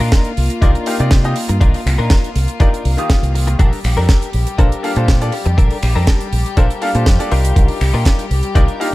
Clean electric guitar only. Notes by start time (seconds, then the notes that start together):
0.00 D4 D#4 F4 A#4
0.61 D4 D#4 F4 A#4
1.36 muted clean electric guitar stroke
1.49 muted clean electric guitar stroke
1.61 D4 D#4 F4 A#4
1.98 D4 D#4 F4 A#4
2.60 D4 D#4 F4 A#4
3.35 muted clean electric guitar stroke
3.47 muted clean electric guitar stroke
3.59 D4 A4 A#4
3.97 D4 A4 A#4
4.58 D4 A4 A#4
5.33 muted clean electric guitar stroke
5.46 muted clean electric guitar stroke
5.58 D4 A4 A#4
5.95 D4 A4 A#4
6.57 D4 A4 A#4
7.31 D4 D#4 F4 A#4
7.93 D4 D#4 F4 A#4
8.55 D4 D#4 F4 A#4